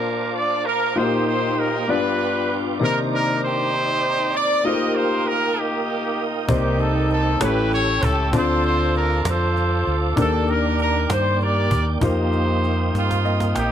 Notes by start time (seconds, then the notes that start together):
Already playing: A#2 A#3 D4 F4 A#4 C5 F5 A5 D6
0.34 D5
0.65 A#4
0.96 A#2 A#3 D#4 F4 F#4 G4 C5 F5 G5 D#6
1.04 G4
1.27 C5
1.58 A#4
1.87 G2 B3 D4 F4 G4 B4 D5 D6
2.79 C3 D#3 A#3 D4 D#4 G4 A#4 C5 D5 A#5
3.13 A#4
3.45 D#4 G4 C5
4.35 D5
4.63 A3 D#4 F4 G4 A#4 D#5 F5 G5 D#6
4.67 A#3 C5
4.95 C5
5.27 A#4
5.58 A#3 D#4 G4
6.47 C2 C3 A#3 D#4 G4 C5 D5 G5 D6, cajon bass
6.79 A4, cajon slap
7.10 A4, cajon slap
7.40 A1 A2 A3 C#4 E4 G4 B4 C#5 G5 A5 E6, cajon slap
7.72 C#5, cajon slap
8.03 C#2 A4, cajon bass
8.31 D2 D3 C4 D4 F4 A4 C5 D5 F5 A5 D6, cajon bass
8.36 C5
8.63 C5, cajon slap
8.95 A#4, cajon slap
9.25 F2 F4 A4 C5, cajon slap
9.57 cajon slap
9.87 D2, cajon slap
10.15 D#2 D#3 A#3 D4 G4 A4 C5 D5 G5, cajon bass
10.25 D5
10.47 A#4, cajon slap
10.79 A#4, cajon slap
11.10 G2 C5, cajon slap
11.41 G4 A#4 D5, cajon slap
11.71 D#2, cajon bass
12.00 F2 A#3 D#4 F4 G4 F5 D#6, cajon bass
12.04 C5
12.32 cajon slap
12.64 cajon slap
12.94 G2 A#3 C4 F4, cajon slap
13.11 cajon slap
13.25 D#5, cajon slap
13.40 cajon slap
13.55 A#1 A#3 D#4 G4 G5, cajon slap